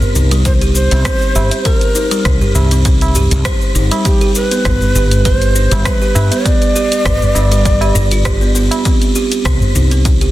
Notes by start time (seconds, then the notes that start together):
Already playing: A#4 C5
0.02 tabla ge, cabasa
0.15 C2 D#4, cabasa
0.31 G3, closed hi-hat, cabasa
0.45 C5, kick, closed hi-hat, cabasa
0.61 G4, closed hi-hat, cabasa
0.75 C5, cabasa
0.91 C2 C4, closed hi-hat, tabla na, tabla tin, cabasa
1.05 C4, kick, cross-stick, closed hi-hat, cabasa
1.22 cabasa
1.35 G1 G4, tabla na, tabla tin, cabasa
1.51 closed hi-hat, tabla tin, cabasa
1.65 A#4 C5, kick, closed hi-hat, cabasa
1.81 closed hi-hat, cabasa
1.95 D#4, cabasa
2.11 G3, closed hi-hat, cabasa
2.25 C2, kick, cross-stick, closed hi-hat, cabasa
2.41 G4, tabla ge, cabasa
2.55 C2, tabla na, cabasa
2.71 C4, closed hi-hat, cabasa
2.85 C4, kick, closed hi-hat, cabasa
3.01 closed hi-hat, tabla na, cabasa
3.15 G4, tabla tin, tabla ge, cabasa
3.31 C2, closed hi-hat, tabla tin, cabasa
3.45 C5, kick, cross-stick, closed hi-hat, cabasa
3.61 cabasa
3.75 G1 D#4, cabasa
3.91 G3, closed hi-hat, tabla na, tabla tin, cabasa
4.05 G4, kick, closed hi-hat, cabasa
4.21 G4, closed hi-hat, cabasa
4.35 B4, cabasa
4.51 B3, closed hi-hat, cabasa
4.65 G1 B3, kick, cross-stick, closed hi-hat, cabasa
4.82 tabla ge, cabasa
4.95 G1 G4, cabasa
5.11 closed hi-hat, cabasa
5.25 B4 C5, kick, closed hi-hat, cabasa
5.42 closed hi-hat, cabasa
5.55 D4, cabasa
5.71 G1 G3, closed hi-hat, tabla na, tabla tin, cabasa
5.85 B4, kick, cross-stick, closed hi-hat, cabasa
6.02 G4, cabasa
6.15 G2, tabla na, tabla tin, cabasa
6.31 B3, closed hi-hat, tabla tin, cabasa
6.45 B3 D5, kick, closed hi-hat, cabasa
6.62 closed hi-hat, cabasa
6.76 G4, cabasa
6.92 closed hi-hat, cabasa
7.05 G1 B4, kick, cross-stick, closed hi-hat, cabasa
7.22 tabla ge, cabasa
7.35 G1 D4, tabla na, cabasa
7.51 G3, closed hi-hat, cabasa
7.65 kick, closed hi-hat, cabasa
7.81 G4, closed hi-hat, tabla na, cabasa
7.95 G1 D4, tabla tin, tabla ge, cabasa
8.11 F4, closed hi-hat, tabla tin, cabasa
8.25 G4, kick, cross-stick, closed hi-hat, cabasa
8.41 B3, cabasa
8.55 B3, cabasa
8.71 closed hi-hat, tabla na, tabla tin, cabasa
8.85 C4, kick, closed hi-hat, cabasa
9.02 closed hi-hat, cabasa
9.15 G4, cabasa
9.32 closed hi-hat, cabasa
9.45 C2 C5, kick, cross-stick, closed hi-hat, cabasa
9.61 tabla ge, cabasa
9.75 C2 D#4, cabasa
9.91 C4, closed hi-hat, cabasa
10.05 kick, closed hi-hat, cabasa
10.21 G4, closed hi-hat, cabasa